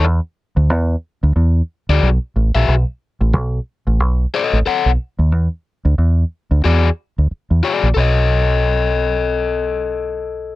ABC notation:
X:1
M:4/4
L:1/16
Q:"Swing 16ths" 1/4=91
K:Bmix
V:1 name="Overdriven electric guitar"
z8 z3 [FG=d] z3 [FGe] | z8 z2 [Acd] z [Acf] z3 | z8 [FG=d] z4 z [FGd] z | [Acd]16 |]
V:2 name="Fingered electric bass" clef=bass
E,, z2 =D,, E,,2 z D,, E,,2 z D,, B,,, z A,,, ^A,,, | B,,, z2 A,,, B,,,2 z A,,, B,,,2 z A,,, z B,,, z D,, | E,, z2 =D,, E,,2 z D,, E,,2 z D,, z E,, z ^A,,, | B,,,16 |]